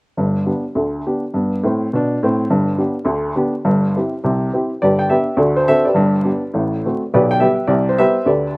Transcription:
0.17 G1 G2
0.46 B3 D4 G4
0.75 D2 D3
1.07 B3 D4 G4
1.34 G2 B3
1.63 A2 C4
1.93 B2 D4
2.23 A2 C4
2.50 G1 G2
2.78 B3 D4 G4
3.05 D2 D3
3.36 B3 D4 G4
3.65 G1 G2
3.96 C4 E4 G4
4.24 C2 C3
4.53 C4 E4 G4
4.82 G1 G2 G4 B4 D5
4.99 G5
5.10 B3 D4 G4 B4 E5
5.37 D2 D3 F#4 A4 D5
5.56 C5
5.68 C4 D4 F#4 A4 C5 E5
5.85 G4 B4 D5
5.94 G1 G2
6.24 B3 D4 G4
6.54 A1 A2
6.85 A3 C4 F#4
7.14 B1 B2 G4 B4 D5
7.31 G5
7.40 G3 B3 G4 B4 E5
7.67 C2 C3 D5
7.89 C5
7.98 G3 B3 G4 B4 C5 E5
8.25 D2 D3 G4 B4 D5

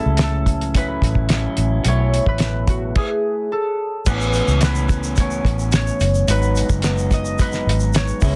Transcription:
Already playing: A2 F#3 C#4 E4 F#4 A4
0.06 C#2
0.17 snare, closed hi-hat
0.23 A4
0.46 kick, closed hi-hat
0.61 closed hi-hat
0.74 A2 F#3 C#4 E4 B4, kick, closed hi-hat
1.02 A1, kick, closed hi-hat
1.15 kick
1.29 A2 F#3 C#4 E4, snare, closed hi-hat
1.57 A1, closed hi-hat
1.84 B1 B2 F#3 A3, closed hi-hat
1.88 E4 C#5
2.14 closed hi-hat
2.26 A1 B4, kick
2.38 snare, closed hi-hat
2.67 F#4, kick, closed hi-hat
2.95 G#4, kick, crash
3.52 A4
4.06 A1 A2 E3 B3 C#4 B4, kick, crash, shaker
4.21 shaker
4.33 closed hi-hat, shaker
4.48 C#2, shaker
4.61 A2 E3 B3 C#4 B4, snare, closed hi-hat, shaker
4.75 shaker
4.89 kick, closed hi-hat, shaker
5.04 shaker
5.15 A2 E3, kick, closed hi-hat, shaker
5.20 B3 C#4 C#5
5.31 shaker
5.45 A1, kick, closed hi-hat
5.59 shaker
5.72 C#5, snare, closed hi-hat, shaker
5.87 shaker
6.00 F#1, closed hi-hat, shaker
6.14 shaker
6.28 G#1 G#2 F#3 B3 D#4 B4, closed hi-hat, shaker
6.42 shaker
6.56 closed hi-hat, shaker
6.69 F#1, kick, shaker
6.82 G#2 F#3 B3 D#4, snare, closed hi-hat, shaker
6.98 shaker
7.11 D#5, kick, closed hi-hat, shaker
7.25 shaker
7.38 G#2 F#3 B3 D#4 B4, kick, closed hi-hat, shaker
7.52 snare, shaker
7.67 G#1, closed hi-hat
7.80 shaker
7.93 C#5, snare, closed hi-hat, shaker
8.08 shaker
8.21 C#2 C#3 G#3 B3 E4, kick, open hi-hat, shaker

